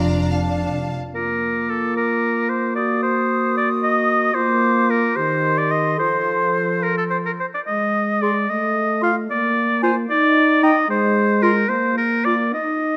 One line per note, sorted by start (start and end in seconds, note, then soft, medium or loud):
0.00 0.92 F1 soft
0.00 0.91 F2 soft
0.00 0.71 D4 soft
0.00 0.29 F4 soft
0.00 0.31 D5 soft
0.00 0.29 F5 soft
0.00 0.29 A#5 soft
0.30 0.94 F5 soft
0.30 0.95 A5 soft
1.14 4.31 A#3 soft
1.14 2.78 F4 soft
1.14 1.71 A#4 soft
1.14 2.78 D6 soft
1.70 1.96 A4 soft
1.97 2.51 A#4 medium
2.49 2.75 C5 soft
2.76 4.35 F#4 soft
2.76 3.02 D5 soft
2.76 4.39 D#6 soft
3.03 3.55 C5 medium
3.57 3.69 D5 medium
3.83 4.36 D#5 medium
4.35 5.12 A#3 soft
4.35 5.18 F4 soft
4.35 4.92 C5 medium
4.35 5.19 D6 soft
4.90 5.18 A#4 medium
5.16 5.98 D#3 medium
5.16 6.00 G4 soft
5.16 5.60 C5 medium
5.16 7.40 C6 soft
5.58 5.72 D5 medium
5.71 5.99 D#5 medium
5.98 7.39 F3 soft
5.98 7.39 A4 soft
5.98 6.85 C5 medium
6.83 6.97 A#4 medium
6.98 7.04 A4 soft
7.10 7.17 C5 medium
7.26 7.32 A#4 soft
7.40 7.46 C5 medium
7.54 7.60 D5 soft
7.67 8.46 G#3 soft
7.67 8.23 D#5 medium
8.22 8.32 G#4 soft
8.22 8.51 D5 medium
8.22 8.35 C6 soft
8.50 9.30 A3 soft
8.50 9.03 D#5 medium
9.01 9.12 F4 soft
9.01 9.15 F5 medium
9.01 9.15 C6 soft
9.30 10.08 A#3 medium
9.30 9.82 D5 medium
9.82 9.92 F4 medium
9.82 9.95 C5 medium
9.82 9.95 G#5 soft
10.10 10.87 D#4 medium
10.10 10.65 D5 medium
10.63 10.72 D#4 medium
10.63 10.89 D#5 medium
10.63 10.75 G5 medium
10.89 11.65 G#3 medium
10.89 11.44 C5 medium
11.43 11.52 F4 medium
11.43 11.71 A#4 medium
11.43 11.56 C6 medium
11.68 12.52 A#3 medium
11.68 11.97 C5 medium
11.98 12.27 A#4 medium
12.25 12.36 F4 soft
12.25 12.53 D5 medium
12.25 12.38 D6 soft
12.53 12.97 D#4 soft
12.53 12.97 D#5 medium